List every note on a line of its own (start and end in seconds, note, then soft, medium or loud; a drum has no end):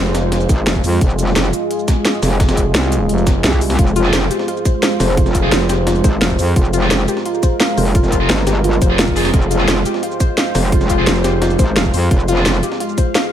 0.00 0.48 F1 loud
0.00 13.32 G#3 medium
0.00 13.32 F4 medium
0.00 1.00 C5 medium
0.06 snare soft
0.06 shaker soft
0.15 snare loud
0.15 closed hi-hat medium
0.15 shaker medium
0.32 snare loud
0.32 closed hi-hat medium
0.41 closed hi-hat soft
0.41 shaker soft
0.49 0.65 G#1 loud
0.49 kick loud
0.49 closed hi-hat medium
0.49 shaker medium
0.67 0.83 F1 medium
0.67 snare loud
0.67 closed hi-hat medium
0.75 kick medium
0.75 shaker soft
0.84 1.00 F2 loud
0.84 closed hi-hat medium
0.84 open hi-hat medium
0.84 shaker medium
0.93 closed hi-hat soft
1.01 1.35 F1 medium
1.01 3.78 G#4 medium
1.01 kick loud
1.01 closed hi-hat medium
1.10 shaker soft
1.19 closed hi-hat medium
1.19 shaker medium
1.27 snare medium
1.36 1.52 F1 loud
1.36 snare loud
1.36 closed hi-hat medium
1.45 snare soft
1.45 shaker soft
1.53 closed hi-hat medium
1.53 shaker medium
1.71 closed hi-hat medium
1.79 shaker soft
1.88 kick loud
1.88 snare loud
1.88 closed hi-hat medium
1.88 shaker medium
2.05 snare loud
2.05 closed hi-hat medium
2.14 shaker soft
2.23 2.73 F1 loud
2.23 snare loud
2.23 closed hi-hat medium
2.23 open hi-hat medium
2.23 shaker medium
2.40 kick loud
2.40 snare loud
2.40 closed hi-hat medium
2.49 snare loud
2.49 closed hi-hat medium
2.49 shaker soft
2.57 kick medium
2.57 closed hi-hat medium
2.57 shaker medium
2.75 3.08 C2 loud
2.75 snare loud
2.75 closed hi-hat medium
2.83 snare soft
2.83 shaker soft
2.92 closed hi-hat medium
2.92 closed hi-hat loud
2.92 shaker medium
3.09 3.43 F1 loud
3.09 closed hi-hat medium
3.18 closed hi-hat soft
3.18 shaker soft
3.27 kick loud
3.27 snare loud
3.27 closed hi-hat medium
3.27 shaker medium
3.44 3.77 C2 medium
3.44 snare loud
3.44 closed hi-hat medium
3.53 kick medium
3.53 shaker soft
3.61 closed hi-hat medium
3.61 open hi-hat medium
3.61 shaker medium
3.70 snare loud
3.70 closed hi-hat medium
3.79 4.12 F1 loud
3.79 3.86 F4 medium
3.79 6.55 C5 medium
3.79 kick loud
3.79 closed hi-hat medium
3.87 shaker soft
3.96 4.07 F4 loud
3.96 closed hi-hat medium
3.96 closed hi-hat loud
3.96 shaker medium
4.04 4.17 C4 medium
4.04 4.17 F4 medium
4.04 4.17 G#4 loud
4.04 snare medium
4.13 4.29 F1 loud
4.13 4.18 C5 medium
4.13 snare loud
4.13 closed hi-hat medium
4.22 snare soft
4.22 shaker soft
4.31 4.35 G4 medium
4.31 closed hi-hat medium
4.31 closed hi-hat loud
4.31 shaker medium
4.39 snare medium
4.48 4.55 F4 medium
4.48 closed hi-hat medium
4.57 shaker soft
4.65 4.76 C5 medium
4.65 kick loud
4.65 closed hi-hat medium
4.65 shaker medium
4.83 4.90 F5 loud
4.83 snare loud
4.83 closed hi-hat medium
4.83 open hi-hat medium
4.91 shaker soft
5.00 5.51 F1 loud
5.00 5.11 C5 medium
5.00 snare loud
5.00 closed hi-hat medium
5.00 open hi-hat medium
5.00 shaker medium
5.17 5.25 F4 medium
5.17 kick loud
5.17 closed hi-hat medium
5.26 snare soft
5.26 shaker soft
5.35 5.46 F4 loud
5.35 kick medium
5.35 closed hi-hat medium
5.35 shaker medium
5.43 5.51 C4 medium
5.43 5.51 F4 medium
5.43 5.51 G#4 medium
5.52 6.03 F1 loud
5.52 5.56 C5 medium
5.52 snare loud
5.52 closed hi-hat medium
5.61 snare soft
5.61 shaker soft
5.69 5.74 G4 medium
5.69 snare loud
5.69 closed hi-hat loud
5.69 closed hi-hat medium
5.69 shaker medium
5.87 5.94 F4 medium
5.87 snare loud
5.87 closed hi-hat medium
5.95 closed hi-hat soft
5.95 shaker soft
6.04 6.20 G#1 loud
6.04 6.15 C5 medium
6.04 kick loud
6.04 closed hi-hat medium
6.04 shaker medium
6.21 6.37 F1 loud
6.21 6.29 F5 loud
6.21 snare loud
6.21 closed hi-hat medium
6.30 kick medium
6.30 shaker soft
6.39 6.55 F2 loud
6.39 6.50 C5 medium
6.39 closed hi-hat medium
6.39 open hi-hat medium
6.39 shaker medium
6.47 closed hi-hat soft
6.56 6.89 F1 loud
6.56 6.63 F4 medium
6.56 9.33 A#4 medium
6.56 kick loud
6.56 closed hi-hat medium
6.65 shaker soft
6.73 6.84 F4 loud
6.73 closed hi-hat medium
6.73 closed hi-hat loud
6.73 shaker medium
6.82 6.94 C4 medium
6.82 6.94 F4 medium
6.82 6.94 G#4 loud
6.82 snare medium
6.91 7.07 F1 loud
6.91 6.95 C5 medium
6.91 snare loud
6.91 closed hi-hat medium
7.00 snare soft
7.00 shaker soft
7.08 7.12 G4 medium
7.08 closed hi-hat medium
7.08 closed hi-hat loud
7.08 shaker medium
7.17 snare medium
7.25 7.33 F4 medium
7.25 closed hi-hat medium
7.34 shaker soft
7.43 7.54 C5 medium
7.43 kick loud
7.43 closed hi-hat medium
7.43 closed hi-hat loud
7.43 shaker medium
7.60 7.67 F5 loud
7.60 snare loud
7.60 closed hi-hat medium
7.60 open hi-hat medium
7.69 shaker soft
7.77 8.28 F1 loud
7.77 7.88 C5 medium
7.77 closed hi-hat medium
7.77 open hi-hat medium
7.77 shaker medium
7.86 closed hi-hat soft
7.95 8.02 F4 medium
7.95 kick loud
7.95 closed hi-hat medium
8.04 snare soft
8.04 shaker soft
8.12 8.23 F4 loud
8.12 kick medium
8.12 closed hi-hat medium
8.12 shaker medium
8.20 8.28 C4 medium
8.20 8.28 F4 medium
8.20 8.28 G#4 medium
8.29 8.80 G1 loud
8.29 8.34 C5 medium
8.29 snare loud
8.29 closed hi-hat medium
8.38 snare soft
8.38 shaker soft
8.47 8.51 G4 medium
8.47 snare loud
8.47 closed hi-hat medium
8.47 shaker medium
8.64 8.71 F4 medium
8.64 closed hi-hat medium
8.73 closed hi-hat soft
8.73 shaker soft
8.82 9.32 F1 loud
8.82 8.92 C5 medium
8.82 kick loud
8.82 closed hi-hat medium
8.82 shaker medium
8.90 8.98 C4 medium
8.90 8.98 F4 medium
8.90 8.98 G#4 medium
8.99 9.10 F4 loud
8.99 snare loud
8.99 closed hi-hat medium
9.08 kick medium
9.08 shaker soft
9.16 9.28 C4 medium
9.16 9.28 F4 medium
9.16 9.28 G#4 loud
9.16 9.23 G#4 medium
9.16 closed hi-hat medium
9.16 open hi-hat medium
9.16 shaker medium
9.25 snare loud
9.25 closed hi-hat medium
9.34 9.67 F1 loud
9.34 9.41 F4 medium
9.34 12.10 C5 medium
9.34 kick loud
9.34 closed hi-hat medium
9.42 shaker soft
9.51 9.62 F4 loud
9.51 closed hi-hat medium
9.51 shaker medium
9.59 9.71 C4 medium
9.59 9.71 F4 medium
9.59 9.71 G#4 loud
9.59 snare medium
9.68 9.84 F1 loud
9.68 9.75 F4 loud
9.68 snare loud
9.68 closed hi-hat medium
9.77 snare soft
9.77 shaker soft
9.86 9.90 G4 medium
9.86 closed hi-hat medium
9.86 shaker medium
9.94 snare medium
10.03 10.10 F4 medium
10.03 closed hi-hat medium
10.12 shaker soft
10.20 10.31 C5 medium
10.20 kick loud
10.20 closed hi-hat medium
10.20 shaker medium
10.38 10.45 F5 loud
10.38 snare loud
10.38 closed hi-hat medium
10.38 open hi-hat medium
10.46 shaker soft
10.55 11.06 F1 loud
10.55 10.66 C5 medium
10.55 snare loud
10.55 closed hi-hat medium
10.55 open hi-hat medium
10.55 shaker medium
10.72 10.79 F4 medium
10.72 kick loud
10.72 closed hi-hat medium
10.81 snare medium
10.81 shaker soft
10.90 11.00 F4 loud
10.90 kick medium
10.90 closed hi-hat medium
10.90 shaker medium
10.98 11.06 C4 medium
10.98 11.06 F4 medium
10.98 11.06 G#4 medium
11.07 11.58 F1 loud
11.07 11.14 F4 loud
11.07 snare loud
11.07 closed hi-hat medium
11.16 snare soft
11.16 shaker soft
11.24 11.29 G4 medium
11.24 snare loud
11.24 closed hi-hat medium
11.24 shaker medium
11.42 11.49 F4 medium
11.42 snare loud
11.42 closed hi-hat medium
11.50 closed hi-hat soft
11.50 shaker soft
11.59 11.75 G#1 loud
11.59 11.70 C5 medium
11.59 kick loud
11.59 closed hi-hat medium
11.59 shaker medium
11.76 11.92 F1 medium
11.76 11.84 F5 loud
11.76 snare loud
11.76 closed hi-hat medium
11.85 kick medium
11.85 shaker soft
11.94 12.10 F2 loud
11.94 12.04 C5 medium
11.94 closed hi-hat medium
11.94 open hi-hat medium
11.94 shaker medium
12.02 closed hi-hat soft
12.11 12.44 F1 medium
12.11 12.18 F4 medium
12.11 13.32 F5 medium
12.11 kick loud
12.11 closed hi-hat medium
12.20 shaker soft
12.28 12.39 F4 loud
12.28 closed hi-hat medium
12.28 shaker medium
12.37 12.49 C4 medium
12.37 12.49 F4 medium
12.37 12.49 G#4 loud
12.37 snare medium
12.46 12.62 F1 loud
12.46 12.53 F4 loud
12.46 snare loud
12.46 closed hi-hat medium
12.54 snare soft
12.54 shaker soft
12.63 12.67 G4 medium
12.63 closed hi-hat medium
12.63 shaker medium
12.72 snare medium
12.80 12.88 F4 medium
12.80 closed hi-hat medium
12.89 shaker soft
12.98 13.08 C5 medium
12.98 kick loud
12.98 closed hi-hat medium
12.98 shaker medium
13.15 13.22 F5 loud
13.15 snare loud
13.15 closed hi-hat medium
13.15 open hi-hat medium
13.24 shaker soft